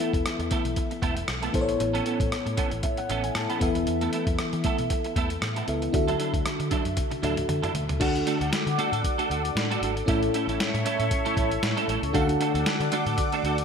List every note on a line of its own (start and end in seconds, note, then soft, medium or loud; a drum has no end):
0.00 0.47 E3 medium
0.00 0.11 A3 medium
0.00 1.50 B3 medium
0.00 0.11 B3 medium
0.00 1.51 E4 medium
0.00 0.11 E4 medium
0.00 1.51 A4 medium
0.00 0.11 A4 medium
0.00 1.51 E5 medium
0.00 closed hi-hat medium
0.13 0.22 E1 medium
0.13 muted clean electric guitar stroke soft
0.13 kick medium
0.13 closed hi-hat medium
0.25 muted fingered electric bass stroke soft
0.25 muted clean electric guitar stroke soft
0.25 cross-stick loud
0.25 closed hi-hat medium
0.39 0.48 E2 medium
0.39 muted clean electric guitar stroke soft
0.39 closed hi-hat soft
0.51 0.65 A3 medium
0.51 0.65 B3 medium
0.51 0.65 E4 medium
0.51 0.64 A4 medium
0.51 kick medium
0.51 closed hi-hat medium
0.65 0.74 B1 medium
0.65 muted clean electric guitar stroke soft
0.65 closed hi-hat medium
0.76 muted clean electric guitar stroke soft
0.76 kick medium
0.76 closed hi-hat medium
0.91 muted clean electric guitar stroke soft
0.91 closed hi-hat soft
1.02 1.22 E1 medium
1.02 1.17 A3 medium
1.02 1.16 B3 medium
1.02 1.16 E4 medium
1.02 1.15 A4 medium
1.02 kick medium
1.02 closed hi-hat medium
1.16 muted clean electric guitar stroke soft
1.16 closed hi-hat medium
1.28 1.47 B1 medium
1.28 muted clean electric guitar stroke soft
1.28 cross-stick loud
1.28 closed hi-hat medium
1.42 1.54 A3 medium
1.42 1.53 B3 medium
1.42 1.54 E4 medium
1.42 1.54 A4 medium
1.42 closed hi-hat soft
1.53 1.74 A1 medium
1.53 2.28 A2 medium
1.53 3.56 B3 medium
1.53 3.57 E4 medium
1.53 3.57 A4 medium
1.53 1.62 C5 medium
1.53 muted clean electric guitar stroke soft
1.53 kick medium
1.53 closed hi-hat medium
1.61 3.61 C#5 medium
1.68 muted clean electric guitar stroke soft
1.68 closed hi-hat soft
1.80 1.99 A1 medium
1.80 muted clean electric guitar stroke soft
1.80 closed hi-hat medium
1.93 2.05 E3 medium
1.93 2.05 B3 medium
1.93 2.05 C#4 medium
1.93 2.06 A4 medium
1.93 closed hi-hat soft
2.06 2.17 E3 medium
2.06 2.18 B3 medium
2.06 2.18 C#4 medium
2.06 2.18 A4 medium
2.06 closed hi-hat medium
2.20 2.29 A1 medium
2.20 muted clean electric guitar stroke soft
2.20 kick medium
2.20 closed hi-hat medium
2.32 muted clean electric guitar stroke soft
2.32 cross-stick medium
2.32 closed hi-hat medium
2.45 2.55 A2 medium
2.45 muted clean electric guitar stroke soft
2.45 closed hi-hat soft
2.57 2.72 E3 medium
2.57 2.72 B3 medium
2.57 2.71 C#4 medium
2.57 2.71 A4 medium
2.57 kick medium
2.57 closed hi-hat medium
2.71 2.81 A1 medium
2.71 muted clean electric guitar stroke soft
2.71 closed hi-hat soft
2.83 2.97 E5 medium
2.83 muted clean electric guitar stroke soft
2.83 kick medium
2.83 closed hi-hat medium
2.97 3.22 F#5 medium
2.97 muted clean electric guitar stroke soft
2.97 closed hi-hat soft
3.09 3.29 A1 medium
3.09 3.24 E3 medium
3.09 3.24 B3 medium
3.09 3.23 C#4 medium
3.09 3.23 A4 medium
3.09 closed hi-hat medium
3.24 3.35 G#5 medium
3.24 muted clean electric guitar stroke soft
3.24 closed hi-hat medium
3.35 3.46 A2 medium
3.35 3.49 A5 medium
3.35 muted clean electric guitar stroke soft
3.35 cross-stick loud
3.35 closed hi-hat medium
3.49 3.61 E3 medium
3.49 3.60 B3 medium
3.49 3.61 C#4 medium
3.49 3.61 A4 medium
3.49 3.74 B5 medium
3.49 closed hi-hat soft
3.60 3.72 E1 medium
3.60 4.35 E3 medium
3.60 5.64 B3 medium
3.60 5.64 E4 medium
3.60 5.64 A4 medium
3.60 5.65 E5 medium
3.60 muted clean electric guitar stroke soft
3.60 kick medium
3.60 closed hi-hat medium
3.75 3.84 D#1 medium
3.75 muted clean electric guitar stroke soft
3.75 closed hi-hat soft
3.87 4.06 E2 medium
3.87 muted clean electric guitar stroke soft
3.87 closed hi-hat medium
4.01 4.11 A3 medium
4.01 4.12 B3 medium
4.01 4.12 E4 medium
4.01 4.12 A4 medium
4.01 closed hi-hat soft
4.12 4.24 A3 medium
4.12 4.24 B3 medium
4.12 4.25 E4 medium
4.12 4.25 A4 medium
4.12 closed hi-hat medium
4.27 4.36 E2 medium
4.27 muted clean electric guitar stroke medium
4.27 kick medium
4.27 closed hi-hat medium
4.39 muted clean electric guitar stroke soft
4.39 cross-stick medium
4.39 closed hi-hat medium
4.53 4.62 E3 medium
4.53 muted clean electric guitar stroke soft
4.53 closed hi-hat medium
4.64 4.79 A3 medium
4.64 4.78 B3 medium
4.64 4.78 E4 medium
4.64 4.78 A4 medium
4.64 kick medium
4.64 closed hi-hat medium
4.79 4.88 B2 medium
4.79 muted clean electric guitar stroke soft
4.79 closed hi-hat medium
4.90 muted clean electric guitar stroke soft
4.90 kick medium
4.90 closed hi-hat medium
5.04 muted clean electric guitar stroke soft
5.04 closed hi-hat soft
5.16 5.36 E2 medium
5.16 5.31 A3 medium
5.16 5.31 B3 medium
5.16 5.30 E4 medium
5.16 5.30 A4 medium
5.16 kick medium
5.16 closed hi-hat medium
5.30 muted clean electric guitar stroke soft
5.30 closed hi-hat medium
5.42 5.61 A2 medium
5.42 muted clean electric guitar stroke soft
5.42 cross-stick loud
5.42 closed hi-hat medium
5.56 5.67 A3 medium
5.56 5.67 B3 medium
5.56 5.67 E4 medium
5.56 5.67 A4 medium
5.56 closed hi-hat medium
5.68 5.87 C#2 medium
5.68 5.94 B3 medium
5.68 5.94 E4 soft
5.68 5.93 A4 soft
5.68 5.94 E5 medium
5.68 muted clean electric guitar stroke soft
5.68 closed hi-hat medium
5.82 muted clean electric guitar stroke soft
5.82 closed hi-hat soft
5.92 6.13 D2 medium
5.92 6.67 D3 medium
5.92 7.20 D4 medium
5.92 7.20 F#4 medium
5.92 7.21 A4 medium
5.92 7.21 E5 medium
5.92 muted clean electric guitar stroke soft
5.92 kick loud
5.92 closed hi-hat medium
6.08 6.18 F#3 medium
6.08 6.18 D4 medium
6.08 6.19 E4 medium
6.08 6.19 A4 medium
6.08 closed hi-hat soft
6.19 6.31 F#3 medium
6.19 6.31 D4 medium
6.19 6.31 E4 medium
6.19 6.32 A4 medium
6.19 closed hi-hat medium
6.33 6.42 D2 medium
6.33 muted clean electric guitar stroke soft
6.33 kick medium
6.33 closed hi-hat medium
6.45 muted clean electric guitar stroke soft
6.45 cross-stick medium
6.45 closed hi-hat medium
6.59 6.68 D3 medium
6.59 muted clean electric guitar stroke soft
6.59 closed hi-hat soft
6.71 6.86 F#3 medium
6.71 6.85 D4 medium
6.71 6.84 E4 medium
6.71 6.84 A4 medium
6.71 kick medium
6.71 closed hi-hat medium
6.85 6.94 F#2 medium
6.85 muted clean electric guitar stroke soft
6.85 closed hi-hat medium
6.96 muted clean electric guitar stroke soft
6.96 kick medium
6.96 closed hi-hat medium
6.96 high tom soft
7.11 muted clean electric guitar stroke soft
7.11 closed hi-hat soft
7.11 high tom soft
7.22 7.42 D2 medium
7.22 7.37 F#3 medium
7.22 7.98 D4 medium
7.22 7.37 D4 medium
7.22 7.36 E4 medium
7.22 7.99 F#4 soft
7.22 8.00 A4 soft
7.22 7.36 A4 medium
7.22 8.01 E5 medium
7.22 closed hi-hat medium
7.22 mid tom medium
7.37 muted clean electric guitar stroke soft
7.37 closed hi-hat medium
7.37 mid tom medium
7.48 7.60 D3 medium
7.48 muted clean electric guitar stroke soft
7.48 closed hi-hat medium
7.48 mid tom medium
7.62 7.73 F#3 medium
7.62 7.74 D4 medium
7.62 7.73 E4 medium
7.62 7.74 A4 medium
7.62 closed hi-hat soft
7.62 mid tom medium
7.74 7.85 D2 medium
7.74 muted clean electric guitar stroke soft
7.74 closed hi-hat medium
7.74 floor tom medium
7.88 7.98 C#2 medium
7.88 muted clean electric guitar stroke soft
7.88 closed hi-hat soft
7.88 floor tom medium
8.00 8.20 D2 medium
8.00 8.75 D3 medium
8.00 8.15 A3 medium
8.00 10.03 D4 medium
8.00 8.14 D4 medium
8.00 10.03 F#4 medium
8.00 8.14 F#4 medium
8.00 13.65 A4 medium
8.00 10.04 A4 medium
8.00 8.13 A4 medium
8.00 10.06 D5 medium
8.00 10.06 F#5 medium
8.00 10.04 F#5 medium
8.00 10.06 D6 medium
8.00 kick loud
8.00 closed hi-hat medium
8.00 crash medium
8.14 muted clean electric guitar stroke soft
8.14 closed hi-hat soft
8.26 8.38 A3 medium
8.26 8.38 D4 medium
8.26 8.38 F#4 medium
8.26 8.38 A4 medium
8.26 closed hi-hat medium
8.40 8.49 D2 medium
8.40 8.51 A3 medium
8.40 8.50 D4 medium
8.40 8.50 F#4 medium
8.40 8.50 A4 medium
8.40 closed hi-hat medium
8.52 muted fingered electric bass stroke soft
8.52 muted clean electric guitar stroke soft
8.52 snare medium
8.52 closed hi-hat medium
8.66 8.75 D3 loud
8.66 muted clean electric guitar stroke soft
8.66 closed hi-hat soft
8.78 8.92 A3 medium
8.78 8.92 D4 medium
8.78 8.91 F#4 medium
8.78 8.91 A4 medium
8.78 closed hi-hat medium
8.92 9.01 A2 medium
8.92 9.02 A3 medium
8.92 9.02 D4 medium
8.92 9.02 F#4 medium
8.92 9.02 A4 medium
8.92 closed hi-hat medium
9.03 muted clean electric guitar stroke soft
9.03 kick medium
9.03 closed hi-hat medium
9.18 9.28 A3 medium
9.18 9.29 D4 medium
9.18 9.29 F#4 medium
9.18 9.30 A4 medium
9.18 closed hi-hat soft
9.30 9.49 D2 medium
9.30 9.41 A3 medium
9.30 9.42 D4 medium
9.30 9.42 F#4 medium
9.30 9.42 A4 medium
9.30 closed hi-hat medium
9.44 muted clean electric guitar stroke soft
9.44 closed hi-hat medium
9.55 9.75 A2 medium
9.55 muted clean electric guitar stroke soft
9.55 snare loud
9.55 closed hi-hat medium
9.70 9.81 A3 medium
9.70 9.82 D4 medium
9.70 9.82 F#4 medium
9.70 9.82 A4 medium
9.70 closed hi-hat medium
9.81 10.01 G#1 medium
9.81 9.94 A3 medium
9.81 9.94 D4 medium
9.81 9.94 F#4 medium
9.81 9.94 A4 medium
9.81 closed hi-hat medium
9.96 muted clean electric guitar stroke soft
9.96 closed hi-hat medium
10.06 10.27 A1 medium
10.06 10.81 A2 medium
10.06 10.23 A3 medium
10.06 12.10 C#4 medium
10.06 10.22 C#4 medium
10.06 12.10 E4 medium
10.06 10.22 E4 medium
10.06 12.11 A4 medium
10.06 10.22 A4 medium
10.06 12.12 C#5 medium
10.06 12.12 E5 medium
10.06 12.11 E5 medium
10.06 12.12 C#6 medium
10.06 kick loud
10.06 closed hi-hat medium
10.23 muted clean electric guitar stroke soft
10.23 closed hi-hat soft
10.34 10.45 A3 medium
10.34 10.45 C#4 medium
10.34 10.46 E4 medium
10.34 10.46 A4 medium
10.34 closed hi-hat medium
10.47 10.56 A1 medium
10.47 10.58 A3 medium
10.47 10.58 C#4 medium
10.47 10.58 E4 medium
10.47 10.57 A4 medium
10.47 closed hi-hat medium
10.60 muted clean electric guitar stroke soft
10.60 snare medium
10.60 closed hi-hat medium
10.74 10.83 A2 medium
10.74 muted clean electric guitar stroke soft
10.74 closed hi-hat soft
10.85 10.99 A3 medium
10.85 10.98 C#4 medium
10.85 10.98 E4 medium
10.85 10.98 A4 medium
10.85 closed hi-hat medium
10.99 11.08 A2 medium
10.99 11.09 A3 medium
10.99 11.09 C#4 medium
10.99 11.09 E4 medium
10.99 11.09 A4 medium
10.99 closed hi-hat medium
11.11 muted clean electric guitar stroke soft
11.11 kick medium
11.11 closed hi-hat medium
11.25 11.36 A3 medium
11.25 11.36 C#4 medium
11.25 11.37 E4 medium
11.25 11.37 A4 medium
11.25 closed hi-hat soft
11.37 11.56 A1 medium
11.37 11.48 A3 medium
11.37 11.49 C#4 medium
11.37 11.49 E4 medium
11.37 11.49 A4 medium
11.37 kick medium
11.37 closed hi-hat medium
11.51 muted clean electric guitar stroke soft
11.51 closed hi-hat medium
11.62 11.73 A2 medium
11.62 muted clean electric guitar stroke soft
11.62 snare loud
11.62 closed hi-hat medium
11.76 11.87 A3 medium
11.76 11.87 C#4 medium
11.76 11.88 E4 medium
11.76 11.88 A4 medium
11.76 closed hi-hat medium
11.88 11.99 A1 medium
11.88 12.00 A3 medium
11.88 12.00 C#4 medium
11.88 12.00 E4 medium
11.88 12.01 A4 medium
11.88 closed hi-hat medium
12.02 12.11 C#2 medium
12.02 muted clean electric guitar stroke soft
12.02 closed hi-hat soft
12.13 12.34 D2 loud
12.13 12.88 D3 medium
12.13 12.29 A3 medium
12.13 13.65 D4 medium
12.13 12.28 D4 medium
12.13 13.65 F#4 medium
12.13 12.28 F#4 medium
12.13 13.65 A4 medium
12.13 12.28 A4 medium
12.13 13.65 D5 medium
12.13 12.22 F5 medium
12.13 13.65 F#5 medium
12.13 13.65 D6 medium
12.13 kick loud
12.13 closed hi-hat medium
12.22 13.65 F#5 medium
12.29 muted clean electric guitar stroke soft
12.29 closed hi-hat soft
12.40 12.52 A3 medium
12.40 12.52 D4 medium
12.40 12.52 F#4 medium
12.40 12.52 A4 medium
12.40 closed hi-hat medium
12.54 12.63 D2 medium
12.54 12.64 A3 medium
12.54 12.64 D4 medium
12.54 12.64 F#4 medium
12.54 12.64 A4 medium
12.54 closed hi-hat medium
12.66 snare loud
12.66 closed hi-hat loud
12.80 12.89 D3 loud
12.80 muted clean electric guitar stroke soft
12.80 closed hi-hat medium
12.92 13.06 A3 medium
12.92 13.06 D4 medium
12.92 13.06 F#4 medium
12.92 13.05 A4 medium
12.92 closed hi-hat medium
13.06 13.15 A2 medium
13.06 13.16 A3 medium
13.06 13.16 D4 medium
13.06 13.16 F#4 medium
13.06 13.16 A4 medium
13.06 closed hi-hat medium
13.18 muted clean electric guitar stroke soft
13.18 kick medium
13.18 closed hi-hat medium
13.32 13.43 A3 medium
13.32 13.44 D4 medium
13.32 13.44 F#4 medium
13.32 13.45 A4 medium
13.32 closed hi-hat soft
13.43 13.63 D2 medium
13.43 13.56 A3 medium
13.43 13.56 D4 medium
13.43 13.56 F#4 medium
13.43 13.56 A4 medium
13.43 closed hi-hat medium
13.58 muted clean electric guitar stroke soft
13.58 closed hi-hat medium